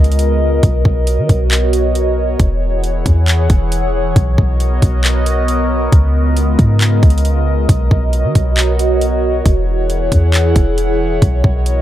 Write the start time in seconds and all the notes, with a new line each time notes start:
Already playing: C#2 C#3 G#3 B3 F4 A#4 D#5
0.04 closed hi-hat
0.12 closed hi-hat
0.19 closed hi-hat
0.63 B1 F#4 C#5, kick, closed hi-hat
0.85 B1, kick
1.07 closed hi-hat
1.18 D#3
1.29 B1, kick, closed hi-hat
1.51 clap, closed hi-hat
1.73 closed hi-hat
1.95 closed hi-hat
2.39 E1 E3 E4 G#4 F#5, kick, closed hi-hat
2.84 closed hi-hat
3.06 E2, kick, closed hi-hat
3.28 clap, closed hi-hat
3.50 E1, kick, closed hi-hat
3.72 closed hi-hat
4.16 B1 B3 F#4 A#4 D#5, kick, closed hi-hat
4.38 B1, kick
4.60 closed hi-hat
4.82 B1, kick, closed hi-hat
5.04 clap, closed hi-hat
5.26 closed hi-hat
5.48 closed hi-hat
5.92 C#2 C#3 G#3 F4 D#5, kick, closed hi-hat
6.37 closed hi-hat
6.59 G#2, kick, closed hi-hat
6.81 clap, closed hi-hat
7.03 C#2, kick, closed hi-hat
7.10 closed hi-hat
7.18 closed hi-hat
7.25 closed hi-hat
7.69 B1 B3 F#4 C#5, kick, closed hi-hat
7.91 B1, kick
8.13 closed hi-hat
8.24 D#3
8.35 B1, kick, closed hi-hat
8.57 clap, closed hi-hat
8.79 closed hi-hat
9.01 closed hi-hat
9.46 E1 E3 E4 G#4 F#5, kick, closed hi-hat
9.90 closed hi-hat
10.12 E2, kick, closed hi-hat
10.34 clap, closed hi-hat
10.56 E1, kick, closed hi-hat
10.78 closed hi-hat
11.22 B1 B3 F#4 A#4 D#5, kick, closed hi-hat
11.44 B1, kick
11.66 closed hi-hat